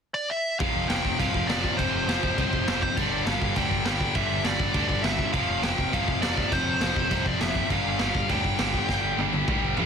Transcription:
0.14 lead electric guitar D5
0.30 lead electric guitar E5
0.59 picked electric bass F1, distorted electric guitar F2 C3 F3, lead electric guitar F5, kick, crash
0.74 picked electric bass F1
0.89 picked electric bass F1, distorted electric guitar F2 C3 F3, lead electric guitar G5, snare, crash
1.05 picked electric bass F1, kick
1.19 picked electric bass C2, distorted electric guitar F2 C3 F3, lead electric guitar F5, kick, crash
1.34 picked electric bass F1, kick
1.47 picked electric bass F1, distorted electric guitar F2 C3 F3, lead electric guitar D5, snare, crash
1.64 kick
1.77 picked electric bass F1, distorted electric guitar F2 C3 F3, lead electric guitar C5, kick, crash
1.93 picked electric bass F1
2.08 picked electric bass F1, distorted electric guitar F2 C3 F3, snare, crash
2.23 picked electric bass F1, kick
2.37 picked electric bass C2, distorted electric guitar F2 C3 F3, kick, crash
2.53 picked electric bass F1, kick
2.67 picked electric bass F1, distorted electric guitar F2 C3 F3, snare, crash
2.83 lead electric guitar C5, kick
2.96 picked electric bass G1, distorted electric guitar G2 D3 G3, lead electric guitar D5, kick, crash
3.11 picked electric bass G1
3.26 picked electric bass G1, distorted electric guitar G2 D3 G3, lead electric guitar F5, snare, crash
3.42 picked electric bass G1, kick
3.56 picked electric bass D2, distorted electric guitar G2 D3 G3, lead electric guitar G5, kick, crash
3.71 picked electric bass G1, kick
3.85 picked electric bass G1, distorted electric guitar G2 D3 G3, lead electric guitar G5, snare, crash
4.01 kick
4.15 picked electric bass G1, distorted electric guitar G2 D3 G3, lead electric guitar E5, kick, crash
4.30 picked electric bass G1
4.44 picked electric bass G1, distorted electric guitar G2 D3 G3, lead electric guitar D5, snare, crash
4.59 picked electric bass G1, kick
4.74 picked electric bass D2, distorted electric guitar G2 D3 G3, kick, crash
4.88 picked electric bass G1, lead electric guitar D5, kick
5.02 picked electric bass G1, distorted electric guitar G2 D3 G3, lead electric guitar E5, snare, crash
5.19 kick
5.33 picked electric bass F1, distorted electric guitar F2 C3 F3, lead electric guitar F5, kick, crash
5.49 picked electric bass F1
5.63 picked electric bass F1, distorted electric guitar F2 C3 F3, lead electric guitar G5, snare, crash
5.78 picked electric bass F1, kick
5.93 picked electric bass C2, distorted electric guitar F2 C3 F3, lead electric guitar F5, kick, crash
6.08 picked electric bass F1, kick
6.22 picked electric bass F1, distorted electric guitar F2 C3 F3, lead electric guitar D5, snare, crash
6.37 kick
6.52 picked electric bass F1, distorted electric guitar F2 C3 F3, lead electric guitar C5, kick, crash
6.66 picked electric bass F1
6.81 picked electric bass F1, distorted electric guitar F2 C3 F3, snare, crash
6.96 picked electric bass F1, kick
7.10 picked electric bass C2, distorted electric guitar F2 C3 F3, kick, crash
7.26 picked electric bass F1, lead electric guitar D5, kick
7.41 picked electric bass F1, distorted electric guitar F2 C3 F3, lead electric guitar E5, snare, crash
7.55 kick
7.70 picked electric bass G1, distorted electric guitar G2 D3 G3, lead electric guitar F5, kick, crash
7.86 picked electric bass G1
7.99 picked electric bass G1, distorted electric guitar G2 D3 G3, snare, crash
8.15 picked electric bass G1, kick
8.29 picked electric bass D2, distorted electric guitar G2 D3 G3, lead electric guitar G5, kick, crash
8.44 picked electric bass G1, kick
8.59 picked electric bass G1, distorted electric guitar G2 D3 G3, snare, crash
8.74 kick
8.89 picked electric bass G1, distorted electric guitar G2 D3 G3, kick, snare
9.03 picked electric bass G1
9.18 picked electric bass G1, distorted electric guitar G2 D3 G3, high tom
9.32 picked electric bass G1, high tom
9.48 picked electric bass D2, distorted electric guitar G2 D3 G3, kick, mid tom
9.63 picked electric bass G1
9.77 picked electric bass G1, distorted electric guitar G2 D3 G3, floor tom

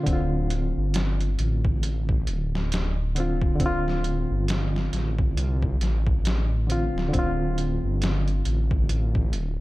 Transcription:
0.03 detuned saw bass D1, reed electric piano D3, kick, closed hi-hat
0.08 reed electric piano C4
0.13 reed electric piano F4
0.50 closed hi-hat
0.77 detuned saw bass G1
0.94 snare, closed hi-hat
1.21 closed hi-hat
1.39 detuned saw bass A1, closed hi-hat
1.65 kick
1.83 closed hi-hat
2.09 kick
2.27 detuned saw bass D1, closed hi-hat
2.55 snare
2.72 snare, closed hi-hat
3.15 reed electric piano D3 C4, closed hi-hat
3.20 reed electric piano F4
3.42 kick
3.56 reed electric piano D3
3.60 detuned saw bass D1, reed electric piano C4, kick, closed hi-hat
3.66 reed electric piano F4
3.88 snare
4.04 closed hi-hat
4.31 detuned saw bass G1
4.48 snare, closed hi-hat
4.76 snare
4.93 detuned saw bass A1, snare, closed hi-hat
5.19 kick
5.37 detuned saw bass C2, closed hi-hat
5.63 kick
5.81 detuned saw bass A1, snare, closed hi-hat
6.07 kick
6.25 snare, closed hi-hat
6.67 reed electric piano D3 C4, closed hi-hat
6.72 reed electric piano F4
6.95 detuned saw bass D1, snare
7.09 reed electric piano D3
7.13 detuned saw bass D1, reed electric piano C4, kick, closed hi-hat
7.19 reed electric piano F4
7.58 closed hi-hat
7.84 detuned saw bass G1
8.02 snare, closed hi-hat
8.28 closed hi-hat
8.45 detuned saw bass A1, closed hi-hat
8.71 kick
8.89 closed hi-hat
9.15 kick
9.33 detuned saw bass D1, closed hi-hat

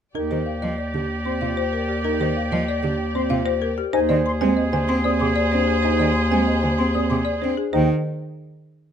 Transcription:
0.15 bass clarinet D#2, grand piano D#4, oboe G4, string section G4 D5, marimba A#4
0.31 cello D#3, grand piano G4, marimba C5, flute D#5
0.46 marimba F5
0.62 cello F3, marimba D#5
0.78 marimba D5
0.94 cello D3, grand piano G4
1.25 grand piano C4, marimba C5, flute C6
1.41 cello C3, grand piano F4, marimba F5
1.57 marimba C5
1.73 marimba A#4
1.89 marimba G4
2.04 grand piano D#4, marimba A#4
2.20 cello D#3, grand piano G4, marimba C5, flute D#5
2.37 marimba F5
2.52 cello F3, marimba D#5
2.68 marimba D5
2.83 cello D3, grand piano G4
3.15 grand piano C4, marimba C5, flute C6
3.30 cello C3, grand piano F4, marimba F5
3.46 marimba C5
3.62 marimba A#4
3.78 marimba G4
3.93 bass clarinet D#2, grand piano D#4, string section G#4 C5, oboe G#4, marimba C5, flute G#5
4.09 cello D#3, grand piano C5, marimba D5, flute D#5
4.25 flute C6, marimba C6
4.41 cello G#3, grand piano C4, flute G#5, marimba G#5
4.57 marimba D#5
4.73 cello D3, grand piano C5, marimba G#5
4.88 cello C4, marimba C6
5.04 grand piano C4, marimba D5, flute D#6
5.20 cello C3, grand piano G#4, marimba C6, flute D6
5.36 marimba D5
5.52 cello C4, grand piano D4, marimba C5
5.67 marimba G#4
5.82 grand piano D#4, marimba C5, flute G#5
5.99 cello D#3, grand piano C5, marimba D5, flute D#5
6.15 marimba C6, flute C6
6.31 cello G#3, grand piano C4, flute G#5, marimba G#5
6.47 marimba D#5
6.63 cello D3, grand piano C5, marimba G#5
6.78 cello C4, marimba C6
6.94 grand piano C4, marimba D5, flute D#6
7.10 cello C3, grand piano G#4, marimba C6, flute D6
7.25 marimba D5
7.42 cello C4, grand piano D4, marimba C5
7.57 marimba G#4
7.73 bass clarinet D#2, cello D#3, grand piano D#4, marimba C5, flute G5

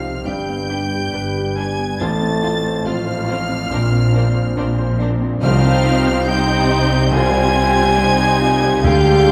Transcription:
Already playing: double bass section C2, grand piano C2 C4 D#4 G4 C5, cello section C3, french horn section F3, flute F5, violin section F6
0.05 grand piano C4
0.24 double bass section G1, cello section G2, grand piano G2, timpani G2, viola section G3 D4, french horn section G3, violin section G4 B4 G6, flute G5
0.48 grand piano B3
0.68 viola section G3 D4, grand piano D4, violin section G4 B4
0.93 grand piano G4
1.12 double bass section G1, cello section G2, viola section G3 D4, violin section G4 B4, grand piano B4
1.35 grand piano G4
1.55 french horn section G3, viola section G3 D4, grand piano D4, violin section G4 B4 G#6, flute G#5
1.78 grand piano B3
1.99 double bass section A1, grand piano A1, cello section A2, french horn section A3, viola section C4 F4, violin section F4 C5 A6, flute A5
2.21 grand piano C4
2.43 viola section C4 F4, grand piano F4, violin section F4 C5
2.64 grand piano C5
2.86 double bass section A1, cello section A2, french horn section F3, viola section C4 F4, grand piano F4, violin section F4 C5 F6, flute F5
3.06 grand piano C5
3.27 viola section C4 F4, grand piano F4, violin section F4 C5
3.48 grand piano C4
3.70 grand piano A#1, double bass section A#1, cello section A#2, viola section C4 D4, violin section A#4 C5
3.92 grand piano C4
4.12 grand piano D4, violin section A#4 C5
4.16 viola section C4 D4
4.34 grand piano C5
4.55 double bass section A#1, cello section A#2, viola section C4 D4, grand piano D4, violin section A#4 C5
4.78 grand piano C5
4.99 viola section C4 D4, grand piano D4, violin section A#4 C5
5.21 grand piano C4
5.41 double bass section C2, grand piano C2, cello section C3, timpani C3, french horn section F3, viola section C4 D#4, violin section G4 C5 F6, flute F5
5.64 grand piano C4
5.85 grand piano D#4
6.07 grand piano C5
6.27 french horn section G3, viola section C4 D#4, grand piano D#4, violin section G4 C5 G6, flute G5
6.47 grand piano C5
6.68 grand piano D#4
6.90 grand piano C4
7.11 grand piano C2, timpani C3, french horn section G3, viola section C4 F4, violin section G4 C5 G#6, flute G#5
7.31 grand piano G3
7.54 grand piano F4
7.76 grand piano C5
7.97 grand piano G3, viola section D#4
8.18 grand piano C5
8.41 grand piano F4
8.62 grand piano G3
8.84 grand piano D2, double bass section D2, cello section D3, viola section G#3 D4, violin section F4 F5 G6, french horn section G4, flute G5
9.07 grand piano G#3
9.28 grand piano F4

